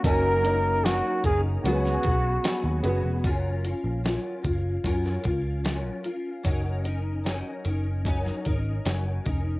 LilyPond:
<<
  \new Staff \with { instrumentName = "Flugelhorn" } { \time 4/4 \key fis \major \tempo 4 = 75 ais'4 fis'8 gis'8 fis'4. r8 | r1 | r1 | }
  \new Staff \with { instrumentName = "Steel-string acoustic guitar" } { \time 4/4 \key fis \major <fis cis' dis' ais'>8 <cis' dis' ais'>8 <fis cis' dis' ais'>8 <cis' dis' ais'>8 <cis fis b fis' gis'>8 <b fis' gis'>8 <fis b fis' gis'>8 <b fis' gis'>8 | <fis cis' eis' ais'>8 <cis' eis' ais'>8 <fis cis' eis' ais'>8 <cis' eis' ais'>8 <fis cis' eis' ais'>8 <cis' eis' ais'>8 <fis cis' eis' ais'>8 <cis' eis' ais'>8 | <fis cis' dis' ais'>8 <cis' dis' ais'>8 <fis cis' dis' ais'>8 <cis' dis' ais'>8 <fis cis' dis' ais'>8 <cis' dis' ais'>8 <fis cis' dis' ais'>8 <cis' dis' ais'>8 | }
  \new Staff \with { instrumentName = "Upright piano" } { \time 4/4 \key fis \major <fis ais cis' dis' ais'>8 <fis ais cis' dis' ais'>4. <gis b cis' fis' ais' b'>4. <gis b cis' fis' b'>8 | r1 | r1 | }
  \new Staff \with { instrumentName = "Picked electric bass" } { \clef bass \time 4/4 \key fis \major fis,,4~ fis,,16 r16 fis,,8 cis,8 b,,8 r16 dis,16 fis,,16 eis,,16 | fis,,8. ais,,8 r16 fis,,8 fis,8 cis,4 r8 | fis,,4~ fis,,16 r16 fis,,4 gis,,8 fis,,8 eis,,8 | }
  \new DrumStaff \with { instrumentName = "Drums" } \drummode { \time 4/4 <hh bd>8 hh8 <hh sn>8 <hh bd>8 hh16 sn16 <hh bd>8 <hh sn>8 hh8 | <hh bd>8 hh8 <hh sn>8 <hh bd>8 <hh bd>16 sn16 <hh bd>8 <hh sn>8 hh8 | <hh bd>8 hh8 <hh sn>8 hh8 <hh bd>16 sn16 <hh bd>8 <hh sn>8 <hh bd>8 | }
>>